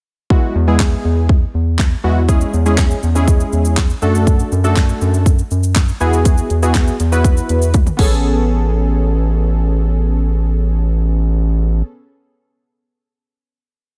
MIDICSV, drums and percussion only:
0, 0, Header, 1, 2, 480
1, 0, Start_track
1, 0, Key_signature, 3, "major"
1, 0, Tempo, 495868
1, 294, Time_signature, 4, 2, 24, 8
1, 13529, End_track
2, 0, Start_track
2, 0, Title_t, "Drums"
2, 293, Note_on_c, 9, 36, 116
2, 390, Note_off_c, 9, 36, 0
2, 772, Note_on_c, 9, 36, 118
2, 772, Note_on_c, 9, 39, 106
2, 775, Note_on_c, 9, 38, 85
2, 868, Note_off_c, 9, 39, 0
2, 869, Note_off_c, 9, 36, 0
2, 871, Note_off_c, 9, 38, 0
2, 1252, Note_on_c, 9, 36, 120
2, 1349, Note_off_c, 9, 36, 0
2, 1730, Note_on_c, 9, 39, 110
2, 1733, Note_on_c, 9, 38, 86
2, 1734, Note_on_c, 9, 36, 111
2, 1827, Note_off_c, 9, 39, 0
2, 1830, Note_off_c, 9, 38, 0
2, 1831, Note_off_c, 9, 36, 0
2, 2212, Note_on_c, 9, 82, 77
2, 2213, Note_on_c, 9, 36, 113
2, 2309, Note_off_c, 9, 82, 0
2, 2310, Note_off_c, 9, 36, 0
2, 2332, Note_on_c, 9, 82, 55
2, 2429, Note_off_c, 9, 82, 0
2, 2454, Note_on_c, 9, 82, 45
2, 2551, Note_off_c, 9, 82, 0
2, 2573, Note_on_c, 9, 82, 69
2, 2670, Note_off_c, 9, 82, 0
2, 2690, Note_on_c, 9, 82, 78
2, 2691, Note_on_c, 9, 39, 106
2, 2692, Note_on_c, 9, 36, 121
2, 2694, Note_on_c, 9, 38, 86
2, 2787, Note_off_c, 9, 82, 0
2, 2788, Note_off_c, 9, 39, 0
2, 2789, Note_off_c, 9, 36, 0
2, 2791, Note_off_c, 9, 38, 0
2, 2814, Note_on_c, 9, 82, 54
2, 2910, Note_off_c, 9, 82, 0
2, 2931, Note_on_c, 9, 82, 54
2, 3028, Note_off_c, 9, 82, 0
2, 3054, Note_on_c, 9, 82, 71
2, 3151, Note_off_c, 9, 82, 0
2, 3171, Note_on_c, 9, 36, 117
2, 3172, Note_on_c, 9, 82, 81
2, 3268, Note_off_c, 9, 36, 0
2, 3269, Note_off_c, 9, 82, 0
2, 3294, Note_on_c, 9, 82, 51
2, 3390, Note_off_c, 9, 82, 0
2, 3413, Note_on_c, 9, 82, 54
2, 3509, Note_off_c, 9, 82, 0
2, 3531, Note_on_c, 9, 82, 73
2, 3628, Note_off_c, 9, 82, 0
2, 3650, Note_on_c, 9, 82, 67
2, 3651, Note_on_c, 9, 39, 110
2, 3654, Note_on_c, 9, 36, 113
2, 3654, Note_on_c, 9, 38, 87
2, 3746, Note_off_c, 9, 82, 0
2, 3747, Note_off_c, 9, 39, 0
2, 3750, Note_off_c, 9, 38, 0
2, 3751, Note_off_c, 9, 36, 0
2, 3773, Note_on_c, 9, 82, 44
2, 3870, Note_off_c, 9, 82, 0
2, 3891, Note_on_c, 9, 82, 55
2, 3988, Note_off_c, 9, 82, 0
2, 4017, Note_on_c, 9, 82, 73
2, 4113, Note_off_c, 9, 82, 0
2, 4134, Note_on_c, 9, 36, 115
2, 4134, Note_on_c, 9, 82, 79
2, 4230, Note_off_c, 9, 82, 0
2, 4231, Note_off_c, 9, 36, 0
2, 4253, Note_on_c, 9, 82, 53
2, 4350, Note_off_c, 9, 82, 0
2, 4374, Note_on_c, 9, 82, 46
2, 4471, Note_off_c, 9, 82, 0
2, 4494, Note_on_c, 9, 82, 67
2, 4591, Note_off_c, 9, 82, 0
2, 4610, Note_on_c, 9, 82, 82
2, 4611, Note_on_c, 9, 39, 109
2, 4613, Note_on_c, 9, 36, 119
2, 4614, Note_on_c, 9, 38, 84
2, 4707, Note_off_c, 9, 82, 0
2, 4708, Note_off_c, 9, 39, 0
2, 4709, Note_off_c, 9, 36, 0
2, 4711, Note_off_c, 9, 38, 0
2, 4734, Note_on_c, 9, 82, 54
2, 4831, Note_off_c, 9, 82, 0
2, 4852, Note_on_c, 9, 82, 53
2, 4949, Note_off_c, 9, 82, 0
2, 4975, Note_on_c, 9, 82, 68
2, 5072, Note_off_c, 9, 82, 0
2, 5092, Note_on_c, 9, 36, 116
2, 5092, Note_on_c, 9, 82, 84
2, 5189, Note_off_c, 9, 36, 0
2, 5189, Note_off_c, 9, 82, 0
2, 5214, Note_on_c, 9, 82, 52
2, 5310, Note_off_c, 9, 82, 0
2, 5332, Note_on_c, 9, 82, 51
2, 5429, Note_off_c, 9, 82, 0
2, 5452, Note_on_c, 9, 82, 75
2, 5548, Note_off_c, 9, 82, 0
2, 5570, Note_on_c, 9, 82, 68
2, 5571, Note_on_c, 9, 39, 112
2, 5574, Note_on_c, 9, 38, 87
2, 5575, Note_on_c, 9, 36, 110
2, 5666, Note_off_c, 9, 82, 0
2, 5667, Note_off_c, 9, 39, 0
2, 5670, Note_off_c, 9, 38, 0
2, 5671, Note_off_c, 9, 36, 0
2, 5694, Note_on_c, 9, 82, 47
2, 5791, Note_off_c, 9, 82, 0
2, 5811, Note_on_c, 9, 82, 52
2, 5908, Note_off_c, 9, 82, 0
2, 5935, Note_on_c, 9, 82, 75
2, 6032, Note_off_c, 9, 82, 0
2, 6053, Note_on_c, 9, 42, 79
2, 6053, Note_on_c, 9, 82, 76
2, 6054, Note_on_c, 9, 36, 118
2, 6150, Note_off_c, 9, 42, 0
2, 6150, Note_off_c, 9, 82, 0
2, 6151, Note_off_c, 9, 36, 0
2, 6172, Note_on_c, 9, 82, 54
2, 6269, Note_off_c, 9, 82, 0
2, 6294, Note_on_c, 9, 42, 46
2, 6294, Note_on_c, 9, 82, 46
2, 6391, Note_off_c, 9, 42, 0
2, 6391, Note_off_c, 9, 82, 0
2, 6415, Note_on_c, 9, 82, 71
2, 6511, Note_off_c, 9, 82, 0
2, 6530, Note_on_c, 9, 42, 84
2, 6530, Note_on_c, 9, 82, 82
2, 6531, Note_on_c, 9, 39, 109
2, 6533, Note_on_c, 9, 36, 121
2, 6534, Note_on_c, 9, 38, 85
2, 6627, Note_off_c, 9, 42, 0
2, 6627, Note_off_c, 9, 82, 0
2, 6628, Note_off_c, 9, 39, 0
2, 6630, Note_off_c, 9, 36, 0
2, 6631, Note_off_c, 9, 38, 0
2, 6655, Note_on_c, 9, 82, 53
2, 6752, Note_off_c, 9, 82, 0
2, 6774, Note_on_c, 9, 42, 55
2, 6774, Note_on_c, 9, 82, 56
2, 6871, Note_off_c, 9, 42, 0
2, 6871, Note_off_c, 9, 82, 0
2, 6896, Note_on_c, 9, 82, 75
2, 6993, Note_off_c, 9, 82, 0
2, 7013, Note_on_c, 9, 36, 120
2, 7014, Note_on_c, 9, 42, 81
2, 7014, Note_on_c, 9, 82, 81
2, 7110, Note_off_c, 9, 36, 0
2, 7111, Note_off_c, 9, 42, 0
2, 7111, Note_off_c, 9, 82, 0
2, 7136, Note_on_c, 9, 82, 54
2, 7232, Note_off_c, 9, 82, 0
2, 7254, Note_on_c, 9, 42, 52
2, 7254, Note_on_c, 9, 82, 53
2, 7351, Note_off_c, 9, 42, 0
2, 7351, Note_off_c, 9, 82, 0
2, 7374, Note_on_c, 9, 82, 72
2, 7471, Note_off_c, 9, 82, 0
2, 7490, Note_on_c, 9, 42, 71
2, 7490, Note_on_c, 9, 82, 69
2, 7493, Note_on_c, 9, 48, 59
2, 7495, Note_on_c, 9, 36, 118
2, 7587, Note_off_c, 9, 42, 0
2, 7587, Note_off_c, 9, 82, 0
2, 7590, Note_off_c, 9, 48, 0
2, 7592, Note_off_c, 9, 36, 0
2, 7614, Note_on_c, 9, 47, 65
2, 7615, Note_on_c, 9, 82, 48
2, 7711, Note_off_c, 9, 47, 0
2, 7712, Note_off_c, 9, 82, 0
2, 7732, Note_on_c, 9, 49, 89
2, 7734, Note_on_c, 9, 36, 103
2, 7829, Note_off_c, 9, 49, 0
2, 7831, Note_off_c, 9, 36, 0
2, 13529, End_track
0, 0, End_of_file